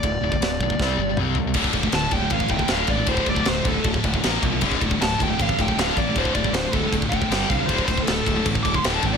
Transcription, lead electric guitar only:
\new Staff \with { instrumentName = "Lead electric guitar" } { \time 4/4 \key d \minor \tempo 4 = 157 d''2. r4 | r4 a''8 g''8 f''8 g''8 f''8 d''8 | c''8 d''8 c''8 a'8 r2 | r4 a''8 g''8 f''8 g''8 f''8 d''8 |
c''8 d''8 c''8 a'8 r8 g''4 f''8 | c''8 c''8 a'4 r8 d'''16 c'''16 g''16 a''16 g''16 d''16 | }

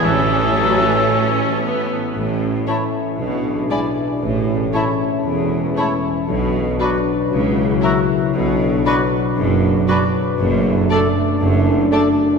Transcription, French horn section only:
\new Staff \with { instrumentName = "French horn section" } { \time 4/4 \key a \major \tempo 4 = 117 << { r1 | cis'2 d'2 | cis'1 | d'2 e'2 |
d'1 | \key d \mixolydian d'1 | } \\ { r1 | e1~ | e1 | fis1~ |
fis1 | a1 | } >> }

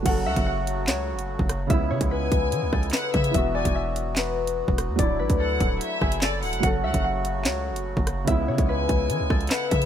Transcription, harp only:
\new Staff \with { instrumentName = "Harp" } { \time 4/4 \key fis \minor \tempo 4 = 146 fis''8 e''8 fis''4 cis''2 | e''8 cis''8 b'4. a'8 b'8 r8 | e''8 d''8 e''4 b'2 | d''8 b'8 a'4. gis'8 a'4 |
fis''8 e''8 fis''4 cis''2 | e''8 cis''8 b'4. a'8 b'8 r8 | }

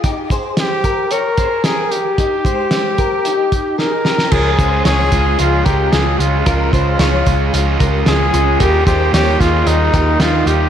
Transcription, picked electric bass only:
\new Staff \with { instrumentName = "Picked electric bass" } { \clef bass \time 4/4 \key des \lydian \tempo 4 = 112 r1 | r1 | des,8 des,8 des,8 des,8 des,8 des,8 des,8 des,8 | des,8 des,8 des,8 des,8 des,8 des,8 des,8 des,8 |
ees,8 ees,8 ees,8 ees,8 ees,8 ees,8 ees,8 ees,8 | }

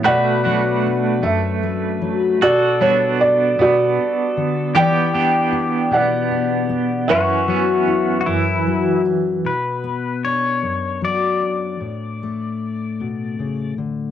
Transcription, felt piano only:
\new Staff \with { instrumentName = "Felt piano" } { \time 6/8 \key b \minor \tempo 4. = 51 << { fis''4. e''4 r8 | d''8 cis''8 d''8 d''4. | g''4. fis''4. | e''2 r4 |
r2. | r2. | } \\ { d''4. r4. | fis'4. fis'4. | d''4. d''4. | b'4. r4. |
r2. | r2. | } >> }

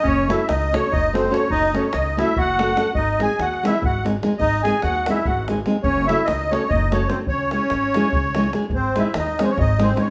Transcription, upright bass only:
\new Staff \with { instrumentName = "Upright bass" } { \clef bass \time 7/8 \key gis \phrygian \tempo 4 = 145 fis,,4 cis,4 fis,,4. | fis,,4 cis,4 fis,,4. | gis,,4 dis,4 gis,,4. | gis,,4 dis,4 gis,,4. |
fis,,4 cis,4 fis,,4. | cis,4 gis,,4 cis,4. | gis,,4 dis,4 gis,,4. | }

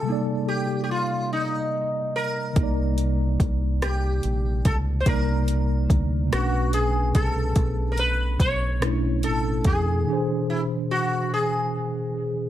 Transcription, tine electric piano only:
\new Staff \with { instrumentName = "Tine electric piano" } { \time 6/8 \key c \major \tempo 4. = 48 <c g bes ees' d''>2. | <c g bes ees' d''>2. | <c g bes ees' d''>4. <b, a cis' d' b'>4.~ | <b, a cis' d' b'>4. <b, a cis' d' e'>4. |
<b, e d' gis' c''>2. | }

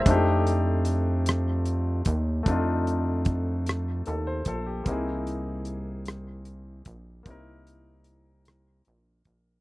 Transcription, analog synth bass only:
\new Staff \with { instrumentName = "Analog synth bass" } { \clef bass \time 6/8 \key f \mixolydian \tempo 4. = 50 f,2~ f,8 ees,8 | f,2 ees,8 bes,,8 | c,2~ c,8 bes,,8 | c,2 bes,,8 bes,,8 | }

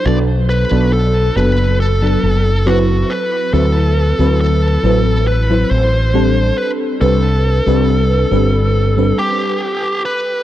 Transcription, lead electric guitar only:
\new Staff \with { instrumentName = "Lead electric guitar" } { \time 4/4 \key a \dorian \tempo 4 = 69 d''8 b'8 a'8 b'8 a'4 fis'8 b'8 | a'4 a'4 b'8 c''4 b'8 | a'2~ a'8 g'4 b'8 | }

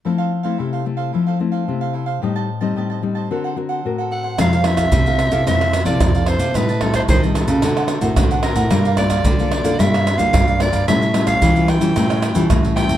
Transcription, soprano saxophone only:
\new Staff \with { instrumentName = "Soprano saxophone" } { \time 4/4 \key f \major \tempo 4 = 111 r1 | r2. r8 fis''8 | f''8 e''4. e''8. d''8. c''8 | b'8 a'16 c''16 c''8 a'4. r8 bes'8~ |
bes'8 d''4. e''8. f''8. d''8 | e''8. f''8. g''4. r8 g''8 | }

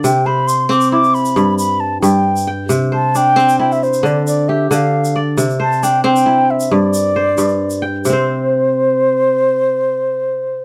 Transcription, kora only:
<<
  \new Staff \with { instrumentName = "Kora" } { \time 12/8 \key c \major \tempo 4. = 90 d''8 c''4 c'8 e'4. r2 g''8~ | g''8 c''8 d'8 c'8 e'4. r8 g'4. d''8~ | d''8 c''8 d'8 c'8 e'4. r8 c''4. g''8~ | g''8 r1 r4. | }
  \new Staff \with { instrumentName = "Kora" } { \clef bass \time 12/8 \key c \major c4 r8 c'4 r8 g,4 r8 g,4 r8 | c4 r8 c'4 r8 d4 r8 d4 r8 | c4 r8 c'4 r8 g,4 r8 g,4 r8 | <c c' c''>1. | }
>>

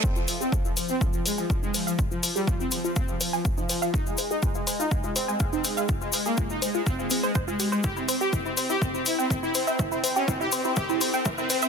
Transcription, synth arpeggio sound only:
\new Staff \with { instrumentName = "Synth arpeggio sound" } { \time 4/4 \key f \minor \tempo 4 = 123 f'16 f'16 c''16 aes'16 f'16 f'16 c''16 f'16 f''16 f'16 c''16 aes''16 f''16 ees'16 c''16 f''16 | f'16 f'16 c''16 aes'16 f'16 f'16 c''16 f'16 f''16 f'16 c''16 aes''16 f''16 ees'16 c''16 f''16 | f'16 f'16 c''16 aes'16 f'16 f'16 c''16 f'16 f''16 f'16 c''16 aes''16 f''16 ees'16 c''16 f''16 | f'16 f'16 c''16 aes'16 f'16 f'16 c''16 f'16 f''16 f'16 c'16 c''16 c''16 f'16 g'16 c''16 |
e'16 e'16 c''16 g'16 e'16 e'16 c''16 e'16 e''16 e'16 c''16 g''16 e''16 e'16 c''16 e''16 | e'16 e'16 c''16 g'16 e'16 e'16 c''16 e'16 e''16 e'16 c''16 g''16 e''16 e'16 c''16 e''16 | }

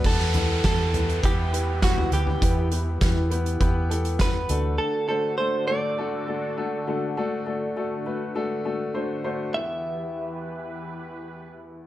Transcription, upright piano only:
<<
  \new Staff \with { instrumentName = "Upright piano" } { \time 4/4 \key e \minor \tempo 4 = 101 <b e' g' b'>8 <b e' g' b'>8 <b e' g' b'>8 <b e' g' b'>8 <b e' g' b'>8 <b e' g' b'>8 <b e' g' b'>8 <b e' g' b'>8 | <b e' g' b'>8 <b e' g' b'>8 <b e' g' b'>8 <b e' g' b'>8 <b e' g' b'>8 <b e' g' a'>8 <b e' g' b'>8 <a d' fis' a'>8~ | <a d' fis' a'>8 <a d' fis' c''>8 <a d' fis' a'>8 <a d' fis' a'>8 <a d' fis' a'>8 <a d' fis' a'>8 <a d' fis' a'>8 <a d' fis' a'>8 | <a d' fis' a'>8 <a d' fis' a'>8 <a d' fis' a'>8 <a d' fis' b'>8 <a d' fis' a'>8 <a d' fis' a'>8 <a d' fis' c''>8 <a d' fis' c''>8 |
<b e' g' b'>1 | }
  \new Staff \with { instrumentName = "Upright piano" } { \clef bass \time 4/4 \key e \minor e4. r2 r8 | e4. r2 d8~ | d4 r2 r8 d8~ | d4 r2. |
e,1 | }
>>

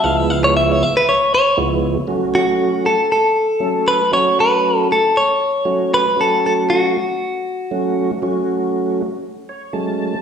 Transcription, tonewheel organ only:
\new Staff \with { instrumentName = "Tonewheel organ" } { \time 4/4 \key fis \minor \tempo 4 = 117 <cis, eis gis b e'>4. r4. <cis, eis gis b e'>4 | <fis a cis' fis'>4. r4. <fis a cis' a'>4 | <fis a cis' fis'>4. r4. <fis a cis' fis'>4 | <fis a cis' fis'>4. r4. <fis a cis' fis'>4 |
<fis a cis' fis'>4. r4 cis''8 <fis gis a cis' a''>4 | }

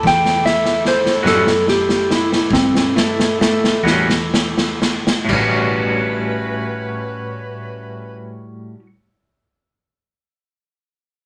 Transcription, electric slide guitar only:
\new Staff \with { instrumentName = "Electric slide guitar" } { \time 12/8 \key a \mixolydian \tempo 4. = 40 g''8 e''8 c''8 a'8 g'8 e'8 c'8 a8 a8 r4. | r1. | }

